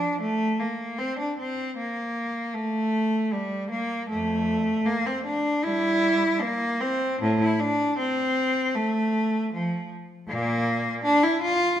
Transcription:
Already playing: F3 D4
0.21 A3
0.60 A#3
0.99 C4
1.19 D4
1.39 C4
1.77 A#3
2.55 A3
3.33 G3
3.70 A#3
4.10 F2 A3
4.86 A#3
5.07 C4
5.25 D4
5.64 G3 E4
6.42 A#3
6.81 C4
7.22 A2
7.41 E4
7.60 D4
7.98 C4
8.75 A3
9.53 F3
10.28 A#2 A#3
11.04 D4
11.23 E4
11.42 F4

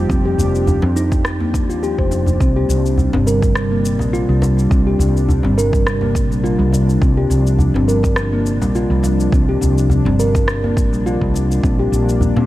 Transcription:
Already playing: F3 G4
0.09 F1 C4 D4, kick, cabasa
0.25 G4, djembe tone
0.38 F1, djembe bass, cabasa
0.55 cabasa
0.67 djembe bass, cabasa
0.82 F2 C4, djembe slap, djembe tone
0.96 D#4, cabasa
1.12 kick, djembe slap, cabasa
1.25 cross-stick, cabasa
1.40 A#3, djembe tone
1.54 kick, djembe tone, cabasa
1.69 D#2 F4, cabasa
1.83 G4, cabasa
1.98 F1 C5, kick
2.11 djembe tone, cabasa
2.27 djembe bass, cabasa
2.40 C2 C3 G3 C4, kick, cabasa
2.56 G4, djembe tone
2.69 C2, cabasa
2.86 cabasa
2.98 djembe bass, cabasa
3.13 G1 C4, djembe slap, djembe tone
3.27 A#4, cabasa
3.42 kick, djembe slap, cabasa
3.55 cross-stick, cabasa
3.72 A#3
3.85 cabasa
3.99 A#1 G3, djembe tone, cabasa
4.13 F4, cabasa
4.29 C2 G3
4.42 djembe slap, djembe tone, cabasa
4.59 cabasa
4.71 C2 C4, kick, cabasa
4.87 G4
4.99 C2, djembe bass, cabasa
5.17 cabasa
5.29 djembe bass, cabasa
5.43 G1 C4, djembe slap, djembe tone
5.58 A#4, cabasa
5.73 kick, djembe slap, cabasa
5.87 cross-stick, cabasa
6.01 A#3, djembe tone
6.15 kick, cabasa
6.30 A#1 G3, cabasa
6.44 F4, cabasa
6.59 C2 G3
6.73 djembe tone, cabasa
6.89 cabasa
7.01 C2 F3 C4, kick, cabasa
7.17 G4, djembe tone
7.30 C2, cabasa
7.47 cabasa
7.59 djembe bass, cabasa
7.74 G1 C4, djembe slap, djembe tone
7.88 A#4, cabasa
8.03 kick, djembe slap, cabasa
8.16 cross-stick, cabasa
8.33 A#3
8.46 cabasa
8.61 A#1 G3, djembe tone, cabasa
8.75 F4, cabasa
8.90 C2 G3
9.03 djembe slap, djembe tone, cabasa
9.20 cabasa
9.32 C2 C4, kick, cabasa
9.49 G4
9.61 C2, djembe bass, cabasa
9.78 cabasa
9.90 djembe bass, cabasa
10.05 G1 C4, djembe slap, djembe tone
10.19 A#4, cabasa
10.34 kick, djembe slap, cabasa
10.48 cross-stick, cabasa
10.64 A#3, djembe tone
10.77 kick, cabasa
10.92 A#1 G3, cabasa
11.06 F4, cabasa
11.21 C2 G3, kick
11.34 djembe tone, cabasa
11.51 cabasa
11.63 A#1 A#3 C4, kick, cabasa
11.79 G4, djembe tone
11.92 A#1, cabasa
12.09 cabasa
12.21 djembe bass, cabasa
12.36 A#2 C4, djembe slap, djembe tone

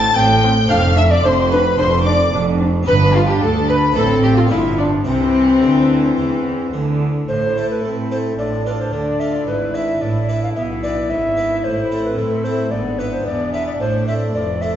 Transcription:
Already playing: A1 A2 C4 E4 A4 A5 A6
0.16 A1 A2 C4 G5 G6
0.43 C4
0.66 C4 D4 A4
0.70 F1 F2 D4 F5 F6
0.96 D4 E5 E6
1.11 D5 D6
1.24 F1 F2 D4 C5 C6
1.51 D4 B4 B5
1.77 F1 F2 D4 C5 C6
2.05 D4 D5 D6
2.33 F1 F2 D4
2.61 D4
2.83 B3 D4 G4 B5
2.87 G1 G2 D4 B4
3.14 F4 F5
3.28 G4 G5
3.40 D2 A4 A5
3.68 B4 B5
3.92 C4 E4
3.96 A1 A2 C4 A4 A5
4.23 G4 G5
4.37 F4 F5
4.48 G1 G2 F3 B3 E4 F4 E5
4.77 D4 D5
5.04 C2 C3 E3 C4 E4 C5
5.62 D2 D3
6.17 E2 E3
6.73 D2 D3
7.28 A1 A2 A3 E4 A4 C5
7.57 A3 E4 A4
7.70 B4
7.84 A2 A3 C4 A4
8.11 A3 E4 A4 C5
8.37 A1 A2 D4 F4 D5
8.66 D4 F4 A4 B4
8.79 C5
8.92 D2 D3 F4 D5
9.20 D4 F4 A4 E5
9.33 D5
9.47 G#1 G#2 E4 B4
9.74 D4 E4 B4 E5
10.01 A1 A2 A4 D5
10.29 D4 E4 B4 E5
10.43 F5
10.55 B1 B2 B3 G#4 E5
10.83 D4 E4 B4 D5
11.09 G#1 G#2 B3 B4 E5
11.37 D4 E4 B4
11.63 A1 A2 E4 C5
11.91 C4 E4 A4
12.05 B4
12.18 A2 A3 C4 E4 A4
12.44 C4 E4 A4 C5
12.71 G#1 G#2 B3 D4 B4 D5
12.99 B3 E4 B4
13.13 C5
13.25 E1 E2 B3 G#4 D5
13.53 B3 E4 B4 E5
13.67 D5
13.79 A1 A2 A3 A4 C5
14.07 C4 E4 A4 E5
14.33 F1 F2 A3 B4 D5
14.61 C4 E4 A4 E5

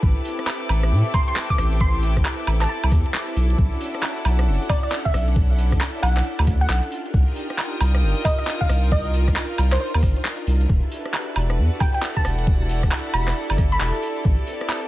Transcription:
Already playing: E4 G4 A4 B4 D6
0.03 A1 C4 E4, kick
0.17 closed hi-hat
0.25 open hi-hat
0.39 cross-stick, closed hi-hat
0.47 clap, high woodblock
0.66 A1 G5, open hi-hat, high woodblock
0.83 cross-stick, closed hi-hat
0.92 A2
1.14 C6, kick, open hi-hat, high woodblock
1.28 C6, closed hi-hat
1.36 clap
1.50 D6, kick, closed hi-hat
1.58 A1, cross-stick, open hi-hat
1.72 closed hi-hat
1.81 C6, kick
1.95 closed hi-hat
2.03 open hi-hat
2.17 kick, cross-stick, open hi-hat
2.25 clap, high woodblock
2.47 A1, open hi-hat, high woodblock
2.61 A5, cross-stick, clap, closed hi-hat
2.69 A5
2.83 C2, high woodblock
2.92 E2, kick, cross-stick, open hi-hat
3.06 closed hi-hat
3.14 clap
3.28 closed hi-hat
3.36 B1 C#4 D4 F#4 A4, open hi-hat
3.50 closed hi-hat
3.58 B1 F#5, kick
3.72 closed hi-hat
3.81 open hi-hat
3.95 cross-stick, closed hi-hat
4.03 clap, high woodblock
4.25 B1, open hi-hat, high woodblock
4.39 cross-stick, closed hi-hat
4.47 F#1
4.69 D5, kick, open hi-hat, high woodblock
4.83 D5, closed hi-hat
4.92 clap
5.05 E5, kick, closed hi-hat
5.14 B1 E4, cross-stick, open hi-hat
5.28 closed hi-hat
5.36 kick
5.50 closed hi-hat
5.58 open hi-hat
5.72 kick, cross-stick, open hi-hat
5.81 clap, high woodblock
6.03 B1 F#5, open hi-hat, high woodblock
6.17 cross-stick, clap, closed hi-hat
6.39 D2, high woodblock
6.47 kick, cross-stick, open hi-hat
6.61 F#5, closed hi-hat
6.69 B1 F#5, clap
6.84 closed hi-hat
6.92 D#4 F4 G4 A#4, open hi-hat
7.06 G5, closed hi-hat
7.11 C2 A#4, kick
7.23 D#6
7.28 closed hi-hat
7.36 open hi-hat
7.50 cross-stick, closed hi-hat
7.58 clap, high woodblock
7.81 C2, open hi-hat, high woodblock
7.95 cross-stick, closed hi-hat
8.03 G1
8.25 D#5, kick, open hi-hat, high woodblock
8.39 D#5, closed hi-hat
8.47 clap
8.61 F5, kick, closed hi-hat
8.69 C2 F4, cross-stick, open hi-hat
8.83 closed hi-hat
8.92 D#5, kick
9.06 closed hi-hat
9.14 open hi-hat
9.28 kick, cross-stick, open hi-hat
9.36 clap, high woodblock
9.58 C2, open hi-hat, high woodblock
9.72 C5, cross-stick, clap, closed hi-hat
9.81 C5
9.94 D#2, high woodblock
10.03 G1, kick, cross-stick, open hi-hat
10.17 closed hi-hat
10.25 clap
10.39 closed hi-hat
10.47 C2, open hi-hat
10.61 closed hi-hat
10.69 E1 E4 F#4 G4 B4, kick
10.83 closed hi-hat
10.92 A4, open hi-hat
10.96 D5
11.05 cross-stick, closed hi-hat
11.14 clap, high woodblock
11.36 E1, open hi-hat, high woodblock
11.42 F#5
11.50 cross-stick, closed hi-hat
11.58 E2
11.80 G5, kick, open hi-hat, high woodblock
11.94 G5, closed hi-hat
12.02 clap
12.16 A5, kick, closed hi-hat
12.25 E1, cross-stick, open hi-hat
12.39 closed hi-hat
12.47 A4, kick
12.61 closed hi-hat
12.69 open hi-hat
12.83 kick, cross-stick, open hi-hat
12.91 clap, high woodblock
13.14 E1 B5, open hi-hat, high woodblock
13.28 cross-stick, clap, closed hi-hat
13.50 G1, high woodblock
13.58 kick, cross-stick, open hi-hat
13.72 B5, closed hi-hat
13.80 E1 B5, clap
13.94 closed hi-hat
14.03 open hi-hat
14.17 closed hi-hat
14.25 A1 C4 E4 B4, kick
14.39 closed hi-hat
14.47 open hi-hat
14.61 cross-stick, closed hi-hat
14.70 G5, clap, high woodblock

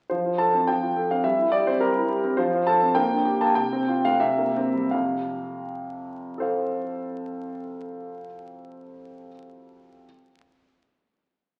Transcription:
0.10 F3 C5
0.26 F4
0.38 A4 A5
0.54 C4
0.67 F3 G5
0.83 F4
0.97 A4
1.11 C4 F5
1.24 G3 E5
1.38 E4
1.52 G4 D5
1.67 C4 C5
1.80 G3 A#4
1.96 E4
2.09 G4
2.24 C4
2.37 F3 C5
2.54 F4
2.67 A4 A5
2.82 C4
2.95 A#3 G5
3.11 D4
3.25 G4
3.41 A#3 A5
3.55 C3 G5
3.73 C4
3.88 F4
4.05 A3 F5
4.20 C3 E5
4.38 A#3
4.57 C4
4.74 G3
4.91 F2 C3 F5
6.38 A4 C5 F5

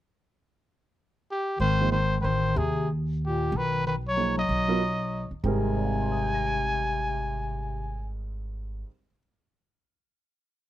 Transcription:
1.31 G4
1.59 G#1 D#3 C5
1.81 F3 A#3 D#4 G#4 C5
1.91 D#3 C5
2.21 A1 D#3 B4 C5
2.56 D#2 C3 G#4
3.24 A#2 G4
3.52 B1 D#3
3.57 B4
3.87 D#3 B4
4.06 F#3 C#5
4.16 F3 A#3 D#4 G#4 C#5
4.37 F#3 D#5
4.49 B1
4.68 F#3 B3 F4 A#4 D#5
5.31 muted upright bass stroke
5.43 G#1 G#2 C3 G3 G#3 C4 A#4 G#5
5.78 D5
5.85 F5
5.93 G#5
6.02 C6
6.12 D#6
6.23 G6
6.34 A#6
6.47 D7

